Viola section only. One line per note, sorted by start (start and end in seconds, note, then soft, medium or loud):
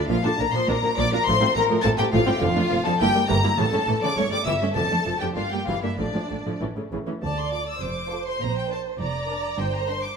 0.09 0.16 F3 medium
0.09 0.15 A#3 medium
0.24 0.30 D4 medium
0.24 0.30 F4 medium
0.41 0.46 A#3 medium
0.41 0.46 D4 medium
0.55 0.61 F3 medium
0.55 0.61 A#3 medium
0.69 0.75 D4 medium
0.69 0.75 F4 medium
0.83 0.89 A#3 medium
0.83 0.89 D4 medium
0.97 1.03 F3 medium
0.97 1.03 A#3 medium
1.12 1.18 D4 medium
1.12 1.18 F4 medium
1.28 1.34 F3 medium
1.28 1.33 A3 medium
1.41 1.47 C4 medium
1.41 1.47 F4 medium
1.56 1.62 A3 medium
1.56 1.62 C4 medium
1.70 1.76 F3 medium
1.70 1.76 A3 medium
1.84 1.90 C4 medium
1.84 1.90 F4 medium
1.98 2.04 A3 medium
1.98 2.04 C4 medium
2.12 2.18 F3 medium
2.12 2.18 A3 loud
2.26 2.32 C4 medium
2.26 2.32 F4 medium
2.40 2.47 D3 medium
2.40 2.47 F3 medium
2.56 2.62 A3 medium
2.56 2.62 D4 medium
2.71 2.77 F3 medium
2.71 2.77 A3 medium
2.85 2.91 D3 medium
2.85 2.92 F3 loud
3.00 3.07 A#3 medium
3.00 3.06 E4 medium
3.14 3.20 G3 medium
3.14 3.20 A#3 medium
3.28 3.35 E3 medium
3.28 3.34 G3 medium
3.44 3.49 A#3 medium
3.44 3.50 E4 medium
3.58 3.64 C#3 medium
3.58 3.64 E3 medium
3.73 3.79 A3 medium
3.73 3.79 C#4 medium
3.88 3.94 E3 medium
3.88 3.94 A3 medium
4.03 4.09 C#3 medium
4.03 4.09 E3 medium
4.17 4.23 A3 medium
4.17 4.23 C#4 medium
4.32 4.38 G3 medium
4.32 4.38 A3 medium
4.46 4.52 E3 medium
4.46 4.52 G3 medium
4.62 4.67 A3 medium
4.62 4.68 C#4 medium
4.76 4.82 D3 medium
4.76 4.82 F3 medium
4.91 4.97 A3 medium
4.91 4.97 D4 medium
5.06 5.12 F3 medium
5.06 5.12 A3 medium
5.21 5.27 D3 medium
5.21 5.27 F3 medium
5.36 5.43 A#3 soft
5.36 5.42 D4 medium
5.52 5.59 G3 medium
5.52 5.58 A#3 medium
5.68 5.74 E3 medium
5.68 5.74 G3 medium
5.83 5.89 A#3 medium
5.83 5.89 D4 medium
5.98 6.05 D3 medium
5.98 6.05 F3 medium
6.14 6.20 F3 soft
6.14 6.21 D4 soft
6.30 6.37 D3 soft
6.30 6.36 A3 soft
6.46 6.52 D3 medium
6.46 6.52 F3 medium
6.61 6.67 E3 medium
6.61 6.68 C#4 soft
6.76 6.83 C#3 medium
6.76 6.83 A3 soft
6.92 6.98 C#3 medium
6.92 6.98 E3 medium
7.07 7.13 E3 soft
7.07 7.13 C#4 soft
7.22 7.78 D5 medium
7.82 9.00 C5 medium
9.00 9.58 D5 medium
9.59 10.17 C5 medium